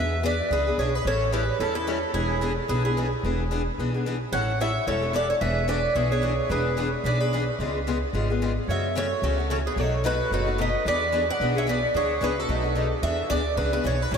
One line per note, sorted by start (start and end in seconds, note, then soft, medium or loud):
0.00 0.40 E2 medium
0.00 0.14 E3 soft
0.00 0.15 B3 medium
0.00 0.15 D4 medium
0.00 0.15 G#4 medium
0.00 0.22 B4 medium
0.00 0.23 E5 medium
0.23 0.33 E3 medium
0.23 0.33 B3 medium
0.23 0.34 D4 medium
0.23 0.34 G#4 medium
0.23 0.50 B4 medium
0.23 0.52 D5 medium
0.50 0.74 C#2 medium
0.50 0.65 E3 medium
0.50 0.65 B3 medium
0.50 0.66 D4 medium
0.50 0.76 G#4 medium
0.50 0.66 G#4 medium
0.50 0.77 B4 medium
0.67 0.79 B3 soft
0.67 0.79 D4 soft
0.67 0.78 G#4 medium
0.78 1.01 B1 medium
0.78 0.89 E3 medium
0.78 0.89 B3 medium
0.78 0.89 D4 medium
0.78 0.95 G#4 medium
0.78 0.89 G#4 medium
0.78 0.95 C#5 medium
0.95 1.06 G#4 medium
0.95 1.06 B4 medium
1.05 1.49 A1 medium
1.05 1.24 E3 medium
1.05 1.24 G3 medium
1.05 1.24 C#4 medium
1.05 1.25 E4 medium
1.05 1.31 A4 medium
1.05 1.25 A4 medium
1.05 1.32 C#5 medium
1.32 1.42 E3 medium
1.32 1.43 G3 medium
1.32 1.43 C#4 medium
1.32 1.43 E4 medium
1.32 1.58 G4 medium
1.32 1.43 A4 medium
1.32 1.58 B4 medium
1.59 2.03 E2 medium
1.59 1.75 E3 medium
1.59 1.75 G3 medium
1.59 1.75 C#4 medium
1.59 1.74 E4 medium
1.59 1.75 E4 medium
1.59 1.74 A4 medium
1.75 1.86 C#4 soft
1.75 2.12 E4 medium
1.75 1.87 E4 soft
1.75 1.87 A4 soft
1.75 2.12 A4 medium
1.87 1.97 E3 medium
1.87 1.97 G3 medium
1.87 1.97 C#4 medium
1.87 1.98 E4 medium
1.87 1.98 A4 medium
2.13 2.57 E1 medium
2.13 2.33 E3 medium
2.13 2.33 B3 medium
2.13 2.33 D4 medium
2.13 2.53 E4 medium
2.13 2.54 G#4 medium
2.13 2.33 G#4 medium
2.41 2.51 E3 medium
2.41 2.52 B3 medium
2.41 2.52 D4 medium
2.41 2.52 G#4 medium
2.68 3.12 B1 medium
2.68 2.83 E3 medium
2.68 2.84 B3 medium
2.68 2.84 D4 medium
2.68 2.82 G#4 medium
2.68 2.84 G#4 medium
2.68 2.84 B4 medium
2.84 2.96 B3 soft
2.84 2.96 D4 soft
2.84 3.09 E4 medium
2.84 2.96 G#4 soft
2.84 3.10 G#4 medium
2.97 3.07 E3 medium
2.97 3.07 B3 medium
2.97 3.07 D4 medium
2.97 3.07 G#4 medium
3.23 3.67 E1 medium
3.23 3.42 E3 medium
3.23 3.42 B3 medium
3.23 3.43 D4 medium
3.23 3.43 G#4 medium
3.51 3.61 E3 medium
3.51 3.61 B3 medium
3.51 3.61 D4 medium
3.51 3.61 G#4 medium
3.78 4.22 B1 medium
3.78 3.93 E3 medium
3.78 3.93 B3 medium
3.78 3.94 D4 medium
3.78 3.93 G#4 medium
3.94 4.05 B3 soft
3.94 4.05 D4 soft
3.94 4.05 G#4 soft
4.06 4.16 E3 medium
4.06 4.16 B3 medium
4.06 4.16 D4 medium
4.06 4.16 G#4 medium
4.32 4.76 A1 medium
4.32 4.51 E3 medium
4.32 4.51 G3 medium
4.32 4.51 C#4 medium
4.32 4.51 E4 medium
4.32 4.52 A4 medium
4.32 4.58 C#5 medium
4.32 4.60 F#5 medium
4.60 4.70 E3 medium
4.60 4.70 G3 medium
4.60 4.70 C#4 medium
4.60 4.70 E4 medium
4.60 4.70 A4 medium
4.60 4.86 C#5 medium
4.60 4.87 E5 medium
4.87 5.30 E1 medium
4.87 5.01 E3 medium
4.87 5.02 G3 medium
4.87 5.02 C#4 medium
4.87 5.02 E4 medium
4.87 5.12 A4 medium
4.87 5.01 A4 medium
4.87 5.15 C#5 medium
5.02 5.13 C#4 soft
5.02 5.13 E4 soft
5.02 5.13 A4 soft
5.13 5.24 E3 medium
5.13 5.24 G3 medium
5.13 5.24 C#4 medium
5.13 5.24 E4 medium
5.13 5.28 A4 medium
5.13 5.24 A4 medium
5.13 5.29 D5 medium
5.29 5.34 A4 medium
5.29 5.35 C#5 medium
5.41 5.85 E1 medium
5.41 5.59 E3 soft
5.41 5.59 B3 medium
5.41 5.60 D4 medium
5.41 5.60 G#4 medium
5.41 5.66 B4 medium
5.41 5.68 E5 medium
5.68 5.78 E3 medium
5.68 5.78 B3 medium
5.68 5.78 D4 medium
5.68 5.79 G#4 medium
5.68 5.94 B4 medium
5.68 5.94 D5 medium
5.95 6.39 B1 medium
5.95 6.10 E3 medium
5.95 6.10 B3 medium
5.95 6.10 D4 medium
5.95 6.09 G#4 medium
5.95 6.10 G#4 medium
5.95 6.11 C#5 medium
6.10 6.22 B3 soft
6.10 6.22 D4 soft
6.10 6.47 G#4 medium
6.10 6.22 G#4 soft
6.10 6.51 C#5 medium
6.22 6.32 E3 medium
6.22 6.33 B3 medium
6.22 6.33 D4 medium
6.22 6.33 G#4 medium
6.49 6.93 E1 medium
6.49 6.68 E3 medium
6.49 6.68 B3 medium
6.49 6.69 D4 medium
6.49 6.69 G#4 medium
6.49 6.90 G#4 medium
6.49 6.90 B4 medium
6.77 6.87 E3 medium
6.77 6.87 B3 medium
6.77 6.88 D4 loud
6.77 6.88 G#4 medium
7.04 7.48 B1 medium
7.04 7.19 E3 medium
7.04 7.19 B3 medium
7.04 7.20 D4 medium
7.04 7.19 G#4 medium
7.04 7.22 B4 medium
7.04 7.20 D5 medium
7.20 7.32 B3 soft
7.20 7.32 D4 soft
7.20 7.31 G#4 soft
7.20 7.47 G#4 medium
7.20 7.47 B4 medium
7.33 7.42 E3 medium
7.33 7.43 B3 medium
7.33 7.43 D4 medium
7.33 7.43 G#4 medium
7.59 8.02 C#2 medium
7.59 7.78 C#3 medium
7.59 7.78 G#3 medium
7.59 7.78 B3 medium
7.59 7.78 F4 medium
7.59 7.78 G#4 medium
7.87 7.97 C#3 medium
7.87 7.97 G#3 medium
7.87 7.97 B3 medium
7.87 7.97 F4 medium
7.87 7.97 G#4 medium
8.13 8.57 G#1 medium
8.13 8.28 C#3 medium
8.13 8.29 G#3 medium
8.13 8.29 B3 medium
8.13 8.29 F4 medium
8.13 8.29 G#4 medium
8.30 8.41 B3 soft
8.30 8.41 F4 soft
8.30 8.41 G#4 soft
8.42 8.51 C#3 medium
8.42 8.51 G#3 medium
8.42 8.51 B3 medium
8.42 8.51 F4 medium
8.42 8.52 G#4 medium
8.68 9.11 F#2 medium
8.68 8.87 C#3 medium
8.68 8.87 E3 medium
8.68 8.87 A3 medium
8.68 8.87 C#4 medium
8.68 8.87 F#4 medium
8.68 8.93 C#5 medium
8.68 8.97 E5 medium
8.95 9.05 C#3 medium
8.95 9.05 E3 medium
8.95 9.06 A3 medium
8.95 9.06 C#4 medium
8.95 9.06 F#4 medium
8.95 9.21 A4 medium
8.95 9.24 C#5 medium
9.22 9.66 C#2 medium
9.22 9.37 C#3 medium
9.22 9.37 E3 medium
9.22 9.38 A3 medium
9.22 9.38 C#4 medium
9.22 9.48 F#4 medium
9.22 9.37 F#4 medium
9.22 9.51 A4 medium
9.38 9.49 A3 soft
9.38 9.50 C#4 soft
9.38 9.49 F#4 soft
9.50 9.60 C#3 medium
9.50 9.60 E3 medium
9.50 9.60 A3 medium
9.50 9.60 C#4 medium
9.50 9.60 F#4 medium
9.50 9.58 A4 medium
9.50 9.56 C#5 medium
9.66 9.80 G#4 medium
9.66 9.72 B4 medium
9.76 10.20 B1 medium
9.76 9.95 B2 medium
9.76 9.95 F#3 medium
9.76 9.95 A3 medium
9.76 9.95 D#4 medium
9.76 9.96 F#4 medium
9.76 10.05 A4 medium
9.76 10.05 C#5 medium
10.04 10.14 B2 medium
10.04 10.14 F#3 medium
10.04 10.14 A3 medium
10.04 10.14 D#4 medium
10.04 10.14 F#4 loud
10.04 10.30 F#4 medium
10.04 10.30 B4 medium
10.31 10.74 F#1 medium
10.31 10.46 B2 medium
10.31 10.46 F#3 medium
10.31 10.46 A3 medium
10.31 10.46 D#4 medium
10.31 10.57 F#4 medium
10.31 10.45 F#4 medium
10.31 10.60 B4 medium
10.46 10.58 A3 soft
10.46 10.58 D#4 soft
10.46 10.58 F#4 soft
10.58 10.68 B2 medium
10.58 10.68 F#3 medium
10.58 10.68 A3 medium
10.58 10.69 D#4 medium
10.58 10.69 F#4 medium
10.58 10.85 B4 medium
10.58 10.85 D#5 medium
10.85 11.29 E2 medium
10.85 11.04 E3 medium
10.85 11.04 B3 medium
10.85 11.04 D4 medium
10.85 11.04 G#4 medium
10.85 11.26 B4 medium
10.85 11.26 D5 medium
11.12 11.22 E3 medium
11.12 11.23 B3 medium
11.12 11.23 D4 medium
11.12 11.23 G#4 medium
11.30 11.54 D5 medium
11.30 11.57 F#5 medium
11.40 11.83 B1 medium
11.40 11.55 E3 medium
11.40 11.55 B3 medium
11.40 11.55 D4 medium
11.40 11.54 G#4 medium
11.55 11.66 B3 soft
11.55 11.66 D4 soft
11.55 11.66 G#4 medium
11.55 11.67 C#5 medium
11.55 11.68 E5 medium
11.67 11.77 E3 medium
11.67 11.77 B3 medium
11.67 11.77 D4 medium
11.67 11.77 G#4 medium
11.67 11.93 B4 medium
11.67 11.93 D5 medium
11.94 12.17 D2 medium
11.94 12.12 E3 medium
11.94 12.12 B3 medium
11.94 12.13 D4 medium
11.94 12.20 G#4 medium
11.94 12.13 G#4 medium
11.94 12.23 C#5 medium
12.21 12.44 C#2 medium
12.21 12.31 E3 medium
12.21 12.31 B3 medium
12.21 12.32 D4 medium
12.21 12.32 G#4 medium
12.21 12.39 G#4 medium
12.21 12.40 B4 medium
12.37 12.91 F#4 medium
12.37 12.92 A4 medium
12.49 12.92 B1 medium
12.49 12.63 B2 medium
12.49 12.63 F#3 medium
12.49 12.63 A3 medium
12.49 12.64 D#4 medium
12.49 12.62 F#4 medium
12.63 12.75 A3 soft
12.63 12.75 D#4 soft
12.63 12.75 F#4 soft
12.75 12.85 B2 medium
12.75 12.86 F#3 medium
12.75 12.86 A3 medium
12.75 12.86 D#4 medium
12.75 12.86 F#4 medium
13.02 13.24 E2 medium
13.02 13.21 E3 medium
13.02 13.22 B3 medium
13.02 13.22 D4 medium
13.02 13.22 G#4 medium
13.02 13.29 E5 medium
13.30 13.53 D2 medium
13.30 13.40 E3 medium
13.30 13.40 B3 medium
13.30 13.41 D4 medium
13.30 13.41 G#4 medium
13.30 13.57 D5 loud
13.57 13.80 C#2 medium
13.57 13.72 E3 medium
13.57 13.72 B3 medium
13.57 13.72 D4 medium
13.57 13.71 G#4 medium
13.57 13.72 B4 medium
13.73 13.83 B3 soft
13.73 13.84 D4 soft
13.73 13.84 G#4 soft
13.73 13.84 B4 medium
13.84 14.07 B1 medium
13.84 13.94 E3 medium
13.84 13.94 B3 medium
13.84 13.95 D4 medium
13.84 13.95 G#4 medium
13.84 14.02 C#5 medium
14.02 14.13 B4 medium
14.11 14.18 A1 medium
14.11 14.18 E3 medium
14.11 14.18 G3 medium
14.11 14.18 C#4 medium
14.11 14.18 E4 medium
14.11 14.18 A4 medium
14.11 14.18 C#5 medium